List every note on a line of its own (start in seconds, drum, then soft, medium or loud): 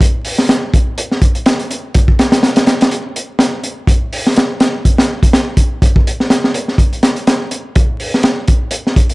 0.01 kick loud
0.01 closed hi-hat medium
0.25 open hi-hat medium
0.38 snare medium
0.49 snare loud
0.49 closed hi-hat loud
0.74 kick loud
0.74 closed hi-hat medium
0.98 closed hi-hat medium
1.11 snare soft
1.22 kick loud
1.22 closed hi-hat medium
1.35 closed hi-hat soft
1.46 snare loud
1.46 closed hi-hat medium
1.59 closed hi-hat soft
1.71 closed hi-hat medium
1.94 kick loud
1.94 closed hi-hat medium
2.08 kick medium
2.19 snare loud
2.19 closed hi-hat medium
2.32 snare loud
2.32 closed hi-hat medium
2.43 snare loud
2.43 closed hi-hat medium
2.56 snare loud
2.56 closed hi-hat medium
2.67 snare loud
2.67 closed hi-hat medium
2.81 snare loud
2.81 closed hi-hat medium
2.91 closed hi-hat medium
3.16 closed hi-hat medium
3.39 snare loud
3.39 closed hi-hat medium
3.64 closed hi-hat medium
3.87 kick loud
3.87 closed hi-hat medium
4.13 open hi-hat medium
4.27 snare medium
4.36 snare loud
4.36 closed hi-hat medium
4.60 snare loud
4.60 closed hi-hat medium
4.85 kick medium
4.85 closed hi-hat medium
4.98 snare loud
4.98 closed hi-hat medium
5.23 kick medium
5.23 closed hi-hat medium
5.33 snare loud
5.33 closed hi-hat medium
5.57 kick medium
5.57 closed hi-hat medium
5.82 kick loud
5.82 closed hi-hat medium
5.96 kick loud
6.07 closed hi-hat medium
6.20 snare soft
6.30 snare loud
6.30 closed hi-hat medium
6.44 snare medium
6.54 closed hi-hat medium
6.68 snare soft
6.78 kick medium
6.78 closed hi-hat medium
6.93 closed hi-hat soft
7.03 snare loud
7.03 closed hi-hat medium
7.16 closed hi-hat soft
7.27 snare loud
7.27 closed hi-hat medium
7.51 closed hi-hat medium
7.76 kick loud
7.76 closed hi-hat medium
8.00 open hi-hat medium
8.14 snare soft
8.23 snare loud
8.23 closed hi-hat loud
8.48 kick loud
8.48 closed hi-hat medium
8.71 closed hi-hat medium
8.87 snare soft
8.96 kick loud
8.96 closed hi-hat medium
9.09 closed hi-hat soft